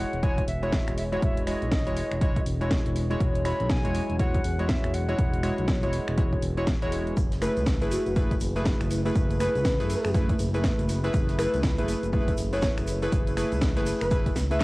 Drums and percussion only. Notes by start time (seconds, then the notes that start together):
0.13 closed hi-hat
0.23 kick, closed hi-hat
0.38 kick, closed hi-hat
0.48 open hi-hat
0.63 closed hi-hat
0.72 kick, snare, closed hi-hat
0.87 finger snap, closed hi-hat
0.97 open hi-hat
1.12 closed hi-hat
1.22 kick, closed hi-hat
1.37 closed hi-hat
1.47 finger snap, open hi-hat
1.62 closed hi-hat
1.71 kick, snare, closed hi-hat
1.87 closed hi-hat
1.96 open hi-hat
2.11 finger snap, closed hi-hat
2.21 kick, closed hi-hat
2.36 kick, closed hi-hat
2.46 open hi-hat
2.61 closed hi-hat
2.71 kick, snare, closed hi-hat
2.86 closed hi-hat
2.96 open hi-hat
3.11 closed hi-hat
3.20 kick, closed hi-hat
3.35 closed hi-hat
3.45 finger snap, open hi-hat
3.60 closed hi-hat
3.70 kick, snare, closed hi-hat
3.85 closed hi-hat
3.95 open hi-hat
4.10 closed hi-hat
4.20 kick, closed hi-hat
4.34 kick, closed hi-hat
4.44 open hi-hat
4.59 closed hi-hat
4.69 kick, snare, closed hi-hat
4.84 finger snap, closed hi-hat
4.94 open hi-hat
5.09 closed hi-hat
5.19 kick, closed hi-hat
5.34 closed hi-hat
5.44 finger snap, open hi-hat
5.58 closed hi-hat
5.68 kick, snare, closed hi-hat
5.83 closed hi-hat
5.93 open hi-hat
6.08 finger snap, closed hi-hat
6.18 kick, closed hi-hat
6.33 kick, closed hi-hat
6.43 open hi-hat
6.58 closed hi-hat
6.67 kick, snare, closed hi-hat
6.82 closed hi-hat
6.92 open hi-hat
7.07 closed hi-hat
7.17 kick, closed hi-hat, shaker
7.32 snare, closed hi-hat, shaker
7.42 finger snap, open hi-hat, shaker
7.57 closed hi-hat, shaker
7.66 kick, snare, closed hi-hat, shaker
7.81 closed hi-hat, shaker
7.91 open hi-hat, shaker
8.06 closed hi-hat, shaker
8.16 kick, closed hi-hat, shaker
8.31 kick, closed hi-hat, shaker
8.41 open hi-hat, shaker
8.56 snare, closed hi-hat, shaker
8.65 kick, snare, closed hi-hat, shaker
8.80 finger snap, closed hi-hat, shaker
8.91 open hi-hat, shaker
9.06 closed hi-hat, shaker
9.15 kick, closed hi-hat, shaker
9.30 closed hi-hat, shaker
9.40 finger snap, open hi-hat, shaker
9.55 closed hi-hat, shaker
9.65 kick, snare, closed hi-hat, shaker
9.80 snare, closed hi-hat, shaker
9.89 open hi-hat, shaker
10.05 finger snap, closed hi-hat, shaker
10.14 kick, closed hi-hat, shaker
10.29 kick, closed hi-hat, shaker
10.39 open hi-hat, shaker
10.54 closed hi-hat, shaker
10.64 kick, snare, closed hi-hat, shaker
10.79 closed hi-hat, shaker
10.89 open hi-hat, shaker
11.04 snare, closed hi-hat, shaker
11.13 kick, closed hi-hat, shaker
11.28 snare, closed hi-hat, shaker
11.39 finger snap, open hi-hat, shaker
11.54 closed hi-hat, shaker
11.63 kick, snare, closed hi-hat, shaker
11.78 closed hi-hat, shaker
11.88 open hi-hat, shaker
12.03 closed hi-hat, shaker
12.12 kick, closed hi-hat, shaker
12.27 kick, closed hi-hat, shaker
12.37 open hi-hat, shaker
12.53 snare, closed hi-hat, shaker
12.62 kick, snare, closed hi-hat, shaker
12.77 finger snap, closed hi-hat, shaker
12.87 open hi-hat, shaker
13.02 closed hi-hat, shaker
13.12 kick, closed hi-hat, shaker
13.27 closed hi-hat, shaker
13.37 finger snap, open hi-hat, shaker
13.52 closed hi-hat, shaker
13.61 kick, snare, closed hi-hat, shaker
13.77 snare, closed hi-hat, shaker
13.86 open hi-hat, shaker
14.01 finger snap, closed hi-hat, shaker
14.11 kick, closed hi-hat, shaker
14.26 kick, closed hi-hat, shaker
14.36 snare, open hi-hat, shaker
14.51 closed hi-hat, shaker
14.61 snare, shaker